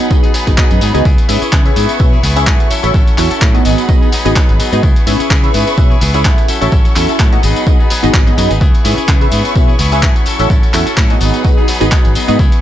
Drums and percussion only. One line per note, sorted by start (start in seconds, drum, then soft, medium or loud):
0.00 tambourine soft
0.11 kick loud
0.11 tambourine soft
0.24 closed hi-hat soft
0.24 tambourine soft
0.34 open hi-hat loud
0.34 tambourine medium
0.47 kick medium
0.47 closed hi-hat medium
0.47 tambourine soft
0.58 kick loud
0.58 clap loud
0.58 tambourine soft
0.71 closed hi-hat medium
0.71 tambourine soft
0.81 open hi-hat medium
0.81 tambourine medium
0.95 closed hi-hat medium
0.95 tambourine soft
1.05 kick loud
1.05 tambourine soft
1.18 closed hi-hat medium
1.18 tambourine soft
1.29 open hi-hat loud
1.29 tambourine medium
1.29 tambourine loud
1.42 closed hi-hat medium
1.42 tambourine soft
1.42 tambourine medium
1.53 kick loud
1.53 clap loud
1.53 tambourine soft
1.66 closed hi-hat soft
1.66 tambourine soft
1.76 open hi-hat medium
1.76 tambourine medium
1.89 closed hi-hat medium
1.89 tambourine medium
1.89 tambourine soft
1.99 kick loud
1.99 tambourine soft
2.13 tambourine soft
2.23 open hi-hat loud
2.23 tambourine medium
2.36 closed hi-hat medium
2.36 tambourine medium
2.36 tambourine soft
2.47 kick loud
2.47 clap loud
2.47 tambourine soft
2.60 closed hi-hat medium
2.60 tambourine soft
2.71 open hi-hat medium
2.71 tambourine medium
2.83 closed hi-hat medium
2.83 tambourine soft
2.84 tambourine soft
2.94 kick loud
2.94 tambourine soft
3.07 closed hi-hat medium
3.07 tambourine soft
3.18 clap medium
3.18 open hi-hat loud
3.18 tambourine medium
3.31 closed hi-hat medium
3.31 tambourine medium
3.31 tambourine soft
3.42 kick loud
3.42 clap loud
3.42 tambourine soft
3.55 closed hi-hat soft
3.55 tambourine soft
3.65 open hi-hat medium
3.65 tambourine loud
3.65 tambourine medium
3.78 closed hi-hat medium
3.78 tambourine soft
3.78 tambourine medium
3.89 kick loud
3.89 tambourine soft
4.02 tambourine soft
4.12 open hi-hat loud
4.12 tambourine medium
4.25 closed hi-hat medium
4.25 tambourine medium
4.25 tambourine soft
4.36 kick loud
4.36 clap loud
4.36 tambourine soft
4.49 closed hi-hat medium
4.49 tambourine soft
4.60 open hi-hat medium
4.60 tambourine loud
4.60 tambourine medium
4.73 closed hi-hat medium
4.73 tambourine medium
4.73 tambourine soft
4.83 kick loud
4.83 tambourine soft
4.96 closed hi-hat medium
4.96 tambourine soft
5.07 open hi-hat loud
5.07 tambourine medium
5.20 closed hi-hat medium
5.20 tambourine medium
5.20 tambourine soft
5.30 kick loud
5.30 clap loud
5.30 tambourine soft
5.44 closed hi-hat soft
5.44 tambourine soft
5.54 open hi-hat loud
5.54 tambourine loud
5.54 tambourine medium
5.67 closed hi-hat medium
5.67 tambourine medium
5.67 tambourine soft
5.77 kick loud
5.77 tambourine soft
5.91 tambourine soft
6.01 open hi-hat loud
6.01 tambourine medium
6.14 closed hi-hat medium
6.14 tambourine medium
6.14 tambourine soft
6.25 kick loud
6.25 clap loud
6.25 tambourine soft
6.38 closed hi-hat medium
6.38 tambourine soft
6.48 open hi-hat loud
6.48 tambourine medium
6.62 closed hi-hat medium
6.62 tambourine soft
6.62 tambourine medium
6.72 kick loud
6.72 tambourine soft
6.85 closed hi-hat medium
6.85 tambourine soft
6.96 clap medium
6.96 open hi-hat loud
6.96 tambourine medium
7.09 closed hi-hat medium
7.09 tambourine soft
7.20 kick loud
7.20 clap loud
7.20 tambourine soft
7.33 closed hi-hat soft
7.33 tambourine soft
7.43 open hi-hat loud
7.43 tambourine loud
7.43 tambourine medium
7.56 closed hi-hat medium
7.56 tambourine medium
7.56 tambourine soft
7.67 kick loud
7.67 tambourine soft
7.80 tambourine soft
7.90 open hi-hat loud
7.90 tambourine loud
7.90 tambourine medium
8.04 closed hi-hat medium
8.04 tambourine medium
8.04 tambourine soft
8.14 kick loud
8.14 clap loud
8.14 tambourine soft
8.27 closed hi-hat medium
8.27 tambourine soft
8.38 open hi-hat loud
8.38 tambourine loud
8.38 tambourine medium
8.51 closed hi-hat medium
8.51 tambourine medium
8.51 tambourine soft
8.61 kick loud
8.61 tambourine soft
8.75 closed hi-hat medium
8.75 tambourine soft
8.85 open hi-hat loud
8.85 tambourine medium
8.98 closed hi-hat medium
8.98 tambourine medium
8.98 tambourine soft
9.08 kick loud
9.08 clap loud
9.08 tambourine soft
9.21 closed hi-hat soft
9.21 tambourine soft
9.31 open hi-hat medium
9.31 tambourine medium
9.45 closed hi-hat medium
9.45 tambourine soft
9.56 kick loud
9.56 tambourine soft
9.69 tambourine soft
9.79 open hi-hat loud
9.79 tambourine medium
9.92 closed hi-hat medium
9.92 tambourine medium
9.92 tambourine soft
10.03 kick loud
10.03 clap loud
10.03 tambourine soft
10.16 closed hi-hat medium
10.16 tambourine soft
10.26 open hi-hat medium
10.26 tambourine loud
10.26 tambourine medium
10.39 closed hi-hat medium
10.39 tambourine medium
10.39 tambourine soft
10.49 kick loud
10.49 tambourine soft
10.63 closed hi-hat medium
10.63 tambourine soft
10.73 clap medium
10.73 open hi-hat loud
10.73 tambourine medium
10.87 closed hi-hat medium
10.87 tambourine soft
10.97 kick loud
10.97 clap loud
10.97 tambourine soft
11.10 closed hi-hat soft
11.10 tambourine soft
11.21 open hi-hat medium
11.21 tambourine medium
11.34 closed hi-hat medium
11.34 tambourine soft
11.44 kick loud
11.44 tambourine soft
11.58 tambourine soft
11.68 open hi-hat loud
11.68 tambourine medium
11.81 closed hi-hat medium
11.81 tambourine medium
11.81 tambourine soft
11.92 kick loud
11.92 clap loud
11.92 tambourine soft
12.05 closed hi-hat medium
12.05 tambourine soft
12.15 open hi-hat medium
12.15 tambourine medium
12.28 closed hi-hat medium
12.28 tambourine medium
12.28 tambourine soft
12.39 kick loud
12.39 tambourine soft
12.52 closed hi-hat medium
12.52 tambourine soft